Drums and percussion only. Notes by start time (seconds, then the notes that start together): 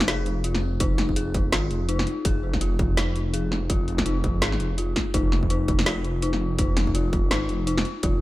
0.00 snare
0.08 snare, closed hi-hat
0.26 closed hi-hat
0.44 closed hi-hat
0.55 snare
0.80 kick, closed hi-hat
0.98 snare, closed hi-hat
1.09 kick
1.16 closed hi-hat
1.34 kick, closed hi-hat
1.52 snare, closed hi-hat
1.71 closed hi-hat
1.89 closed hi-hat
1.99 snare
2.07 closed hi-hat
2.25 kick, closed hi-hat
2.53 kick, snare
2.61 closed hi-hat
2.79 kick, closed hi-hat
2.97 snare, closed hi-hat
3.16 closed hi-hat
3.34 closed hi-hat
3.52 snare
3.70 kick, closed hi-hat
3.88 closed hi-hat
3.98 kick, snare
4.06 closed hi-hat
4.24 kick, closed hi-hat
4.42 snare, closed hi-hat
4.52 snare
4.60 closed hi-hat
4.78 closed hi-hat
4.96 kick, snare, closed hi-hat
5.14 kick, closed hi-hat
5.32 snare
5.43 kick
5.50 closed hi-hat
5.68 kick, closed hi-hat
5.79 snare
5.86 snare, closed hi-hat
6.04 closed hi-hat
6.22 closed hi-hat
6.33 snare
6.59 kick, closed hi-hat
6.77 snare, closed hi-hat
6.87 kick
6.95 closed hi-hat
7.13 kick, closed hi-hat
7.31 snare, closed hi-hat
7.49 closed hi-hat
7.67 closed hi-hat
7.78 snare
7.85 closed hi-hat
8.03 kick, closed hi-hat